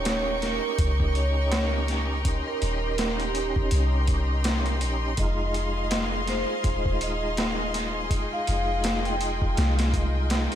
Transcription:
0.00 0.59 D#1 loud
0.00 0.37 C#4 medium
0.00 0.39 D#4 medium
0.00 0.40 G4 loud
0.00 5.15 A#4 medium
0.00 0.38 C#5 medium
0.00 10.55 D#5 medium
0.00 5.14 G5 medium
0.00 2.23 C#6 loud
0.05 snare loud
0.05 closed hi-hat medium
0.05 tabla na medium
0.39 2.20 C#4 medium
0.39 2.21 D#4 medium
0.39 1.09 A#4 medium
0.39 snare medium
0.39 closed hi-hat medium
0.44 2.22 G4 medium
0.79 2.42 C#2 medium
0.79 kick loud
0.79 closed hi-hat medium
1.00 kick medium
1.15 1.82 C#5 medium
1.15 closed hi-hat medium
1.51 snare loud
1.51 closed hi-hat medium
1.51 tabla na medium
1.88 snare soft
1.88 closed hi-hat medium
2.23 3.30 C#4 medium
2.23 3.31 D#4 medium
2.23 10.55 C6 loud
2.23 kick loud
2.23 closed hi-hat medium
2.28 3.33 G4 medium
2.48 3.12 A#4 medium
2.62 3.69 D#1 medium
2.62 closed hi-hat medium
2.98 snare loud
2.98 closed hi-hat medium
2.98 tabla na medium
3.20 3.85 G4 loud
3.20 closed hi-hat soft
3.33 4.77 C#4 medium
3.33 4.79 D#4 medium
3.33 closed hi-hat medium
3.38 4.80 G4 medium
3.56 kick loud
3.71 4.84 C2 medium
3.71 closed hi-hat medium
4.07 kick medium
4.07 closed hi-hat medium
4.44 snare loud
4.44 closed hi-hat medium
4.44 tabla na medium
4.66 closed hi-hat soft
4.81 5.15 A#1 loud
4.81 5.14 C#4 medium
4.81 5.15 D#4 medium
4.81 5.15 G4 medium
4.81 closed hi-hat medium
5.17 6.45 F1 loud
5.17 6.23 G#3 medium
5.17 6.24 D#4 medium
5.17 10.55 G#4 medium
5.17 5.70 D#5 medium
5.17 8.08 F5 medium
5.17 kick loud
5.17 closed hi-hat medium
5.21 6.26 F4 medium
5.54 closed hi-hat medium
5.78 6.24 D#5 medium
5.91 snare loud
5.91 closed hi-hat medium
5.91 tabla na medium
6.26 8.06 G#3 medium
6.26 8.07 D#4 medium
6.26 6.95 C5 loud
6.26 snare soft
6.26 closed hi-hat medium
6.31 8.08 F4 medium
6.64 8.28 D#1 medium
6.64 kick loud
6.64 closed hi-hat loud
6.86 kick medium
7.01 7.69 D#5 medium
7.01 closed hi-hat medium
7.37 snare loud
7.37 closed hi-hat medium
7.37 tabla na medium
7.74 snare soft
7.74 closed hi-hat medium
8.09 9.16 G#3 medium
8.09 9.17 D#4 medium
8.09 10.55 G5 medium
8.09 kick loud
8.09 closed hi-hat medium
8.14 9.18 F4 medium
8.33 8.97 F5 medium
8.47 9.55 F1 medium
8.47 closed hi-hat medium
8.84 snare loud
8.84 closed hi-hat medium
8.84 tabla na medium
9.05 9.70 G5 loud
9.05 closed hi-hat soft
9.18 10.55 G#3 medium
9.18 10.55 D#4 medium
9.18 closed hi-hat medium
9.23 10.55 F4 medium
9.42 kick loud
9.57 10.48 C2 medium
9.57 snare loud
9.57 closed hi-hat medium
9.79 snare loud
9.79 closed hi-hat medium
9.94 kick medium
9.94 closed hi-hat medium
10.30 snare loud
10.30 closed hi-hat medium
10.30 tabla na medium
10.52 closed hi-hat soft

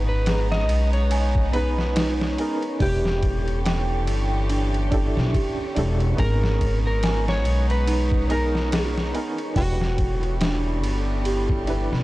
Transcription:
0.00 0.69 G#1 medium
0.00 2.78 G#3 medium
0.00 1.48 B3 medium
0.00 2.78 B3 medium
0.00 12.03 C#4 medium
0.00 0.23 D#4 loud
0.00 1.49 D#4 medium
0.00 2.78 D#4 medium
0.00 1.50 G#4 medium
0.00 1.51 B4 medium
0.00 12.03 C#5 medium
0.00 2.78 A#5 medium
0.09 0.46 B4 medium
0.26 1.08 G#4 medium
0.26 snare loud
0.26 ride medium
0.52 0.89 D#5 medium
0.52 snare medium
0.69 2.35 B1 loud
0.69 ride medium
0.93 1.48 C#5 medium
0.93 ride soft
1.11 1.38 G#5 loud
1.11 ride medium
1.35 kick loud
1.52 2.33 B3 medium
1.52 2.34 D#4 medium
1.52 2.34 G#4 medium
1.52 2.13 B4 medium
1.52 2.35 B4 medium
1.52 ride medium
1.79 snare soft
1.96 2.77 D#4 loud
1.96 snare loud
1.96 ride medium
2.21 snare soft
2.37 2.76 B3 medium
2.37 2.76 D#4 medium
2.37 2.77 G#4 medium
2.37 2.77 A#4 medium
2.37 ride medium
2.63 ride soft
2.79 4.08 E1 loud
2.79 6.16 D3 medium
2.79 6.16 E3 medium
2.79 6.16 B3 medium
2.79 2.95 D4 medium
2.79 2.96 E4 medium
2.79 3.62 G4 medium
2.79 6.15 G4 medium
2.79 2.97 G4 medium
2.79 3.59 G4 medium
2.79 2.97 B4 medium
2.79 kick loud
2.79 open hi-hat medium
3.05 snare soft
3.23 kick loud
3.23 ride medium
3.48 ride soft
3.65 3.92 G5 loud
3.65 snare loud
3.65 ride medium
4.07 5.12 G1 loud
4.07 ride medium
4.49 4.88 D4 medium
4.49 ride medium
4.74 ride soft
4.90 5.71 D4 medium
4.90 5.72 E4 medium
4.90 5.73 G4 medium
4.90 5.73 A4 medium
4.90 kick loud
4.90 ride medium
5.17 5.32 B1 medium
5.17 snare soft
5.34 5.75 G4 medium
5.34 kick medium
5.34 ride medium
5.75 6.15 E1 loud
5.75 6.14 D4 medium
5.75 6.14 E4 medium
5.75 6.15 G4 medium
5.75 6.15 A4 medium
5.75 ride medium
6.00 ride soft
6.15 7.45 G#1 medium
6.15 8.24 B3 medium
6.15 8.25 D#4 medium
6.15 7.00 G#4 medium
6.15 kick loud
6.15 ride medium
6.19 9.54 G#3 medium
6.19 9.54 B3 medium
6.19 9.54 D#4 medium
6.19 8.26 G#4 medium
6.19 6.78 A#4 loud
6.19 9.54 A#5 medium
6.44 snare soft
6.61 kick medium
6.61 ride medium
6.87 7.23 A#4 medium
7.03 7.30 G#5 loud
7.03 snare loud
7.03 ride medium
7.28 7.66 C#5 medium
7.28 snare medium
7.45 9.11 B1 loud
7.45 ride medium
7.70 8.25 B4 medium
7.70 ride soft
7.87 8.68 D#4 medium
7.87 ride medium
8.12 kick loud
8.28 9.09 B3 medium
8.28 9.10 D#4 medium
8.28 9.11 G#4 medium
8.28 8.90 A#4 medium
8.28 9.11 A#4 loud
8.28 ride medium
8.55 snare soft
8.72 9.53 G#4 medium
8.72 snare loud
8.72 ride medium
8.98 snare soft
9.13 9.51 B3 medium
9.13 9.52 D#4 medium
9.13 9.53 G#4 medium
9.13 9.53 A#4 medium
9.13 ride medium
9.38 ride soft
9.54 10.83 E1 loud
9.54 12.03 D3 medium
9.54 12.03 E3 medium
9.54 12.03 G3 medium
9.54 12.03 B3 medium
9.54 9.71 D4 medium
9.54 9.72 E4 medium
9.54 10.35 F#4 loud
9.54 9.72 G4 medium
9.54 9.73 B4 medium
9.54 9.83 G5 loud
9.54 kick loud
9.54 open hi-hat medium
9.81 snare soft
9.98 kick loud
9.98 ride medium
10.23 ride soft
10.41 11.22 D4 loud
10.41 snare loud
10.41 ride medium
10.83 11.87 G1 loud
10.83 ride medium
11.25 12.03 G4 medium
11.25 ride medium
11.49 kick medium
11.66 12.03 D4 medium
11.66 12.03 E4 medium
11.66 12.03 G4 medium
11.66 12.03 B4 medium
11.66 ride medium
11.92 12.03 B1 medium
11.92 snare soft

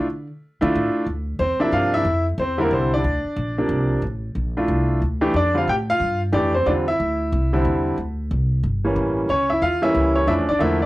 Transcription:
0.00 0.26 D3 loud
0.61 0.73 D3 loud
0.61 1.04 A3 medium
0.61 1.04 D4 medium
0.61 1.04 E4 medium
0.61 1.04 F4 medium
0.75 0.87 A2 medium
1.06 1.38 D2 medium
1.39 1.58 E2 medium
1.39 1.60 C4 medium
1.39 1.59 C5 medium
1.59 2.02 C3 medium
1.59 2.02 F3 medium
1.59 2.03 A#3 medium
1.59 2.03 D4 medium
1.59 1.73 E4 medium
1.59 1.72 E5 medium
1.59 muted upright bass stroke soft
1.72 2.04 G2 medium
1.72 1.93 F4 medium
1.72 1.92 F5 medium
1.94 2.25 E4 medium
1.94 2.24 E5 loud
2.05 2.37 F2 medium
2.38 2.70 E2 medium
2.38 2.56 C4 medium
2.38 2.58 C5 medium
2.58 3.01 D3 medium
2.58 3.01 G3 medium
2.58 2.73 C4 medium
2.58 3.01 E4 medium
2.58 2.71 A#4 medium
2.63 2.72 A#3 medium
2.71 3.03 C2 medium
2.71 2.92 C4 medium
2.71 2.91 C5 medium
2.94 3.57 D4 medium
2.94 3.88 D5 medium
3.04 3.23 D2 medium
3.24 muted upright bass stroke soft
3.36 3.68 A#1 medium
3.58 4.00 C3 medium
3.58 4.01 F3 medium
3.58 4.00 A#3 medium
3.58 4.01 D4 medium
3.69 4.01 C2 medium
4.02 4.34 A1 medium
4.35 4.67 A#1 medium
4.57 4.99 A3 medium
4.57 4.99 D4 medium
4.57 4.99 E4 medium
4.57 5.00 F4 medium
4.68 5.00 C2 medium
5.02 5.33 D2 medium
5.21 5.33 E3 medium
5.21 5.33 A3 medium
5.21 5.33 D4 medium
5.21 5.33 G4 medium
5.34 5.66 F2 medium
5.34 5.55 D4 medium
5.34 5.55 D5 medium
5.54 5.66 D3 medium
5.54 5.66 G3 medium
5.54 5.66 C4 medium
5.54 5.57 F4 medium
5.54 5.68 F4 medium
5.54 5.69 F5 medium
5.68 5.99 A2 medium
5.68 5.75 G4 medium
5.68 5.74 G5 loud
5.90 6.20 F4 medium
5.90 6.20 F5 loud
6.00 6.32 G2 medium
6.32 6.65 F2 medium
6.32 6.52 E3 medium
6.32 6.52 A3 medium
6.32 6.34 D4 medium
6.32 6.54 D4 medium
6.32 6.52 G4 medium
6.32 6.53 D5 medium
6.54 6.65 C4 medium
6.54 6.67 C5 medium
6.66 6.98 E2 medium
6.66 6.85 D3 medium
6.66 6.85 G3 medium
6.66 6.85 C4 medium
6.66 6.74 D4 medium
6.66 6.85 F4 medium
6.66 6.72 D5 medium
6.88 7.52 E4 medium
6.88 7.82 E5 loud
7.00 7.31 D2 medium
7.32 7.64 C2 medium
7.53 7.95 D3 medium
7.53 7.95 G3 medium
7.53 7.96 C4 medium
7.53 7.96 E4 medium
7.65 7.97 E2 medium
7.98 8.30 D2 medium
8.31 8.63 C2 medium
8.63 8.95 G1 medium
8.85 9.27 E3 medium
8.85 9.27 G3 medium
8.85 9.27 A#3 medium
8.85 9.27 C#4 medium
8.96 9.28 A1 medium
9.29 9.61 C#2 medium
9.29 9.50 C#4 medium
9.29 9.49 C#5 medium
9.50 9.63 E4 medium
9.50 9.62 E5 medium
9.62 9.94 E2 medium
9.62 9.83 F4 medium
9.62 9.84 F5 loud
9.82 10.25 E3 medium
9.82 10.25 G3 medium
9.82 10.25 A#3 medium
9.82 10.16 C#4 medium
9.82 10.15 E4 medium
9.82 10.17 E5 loud
9.95 10.27 C#2 medium
10.16 10.25 C#4 medium
10.16 10.27 C#5 medium
10.27 10.38 F2 medium
10.27 10.46 F3 medium
10.27 10.46 A3 medium
10.27 10.46 C#4 medium
10.27 10.46 D4 medium
10.27 10.34 E4 medium
10.27 10.33 E5 loud
10.38 10.48 E2 medium
10.49 10.59 C#2 medium
10.49 10.61 D4 medium
10.49 10.61 D5 medium
10.59 10.86 E2 medium
10.59 10.79 D3 medium
10.59 10.79 F3 medium
10.59 10.79 A3 medium
10.59 10.79 A#3 medium
10.59 10.81 E4 medium
10.59 10.82 E5 medium
10.82 10.86 D5 medium

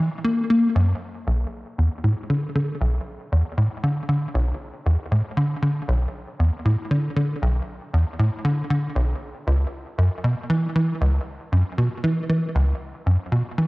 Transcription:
0.24 0.42 A#3 medium
0.50 0.68 A#3 medium
0.75 0.94 F#2 loud
1.27 1.45 B1 medium
1.78 1.89 E2 medium
2.04 2.15 A2 medium
2.30 2.48 D3 medium
2.55 2.73 D3 medium
2.81 2.99 B1 medium
3.32 3.43 E2 medium
3.57 3.68 A2 medium
3.83 4.01 D3 medium
4.09 4.27 D3 medium
4.34 4.53 B1 medium
4.86 4.97 E2 medium
5.12 5.22 A2 medium
5.37 5.55 D3 medium
5.62 5.81 D3 medium
5.88 6.06 B1 loud
6.39 6.50 E2 medium
6.65 6.76 A2 medium
6.91 7.09 D3 medium
7.16 7.34 D3 medium
7.42 7.60 B1 loud
7.93 8.04 E2 medium
8.19 8.30 A2 medium
8.45 8.63 D3 medium
8.70 8.88 D3 medium
8.95 9.14 B1 medium
9.47 9.65 C#2 medium
9.98 10.09 F#2 medium
10.24 10.35 B2 medium
10.50 10.68 E3 medium
10.76 10.94 E3 medium
11.01 11.19 C#2 loud
11.52 11.63 F#2 medium
11.78 11.89 B2 medium
12.04 12.22 E3 medium
12.29 12.47 E3 medium
12.55 12.73 C#2 loud
13.06 13.17 F#2 medium
13.32 13.43 B2 medium
13.58 13.67 E3 medium

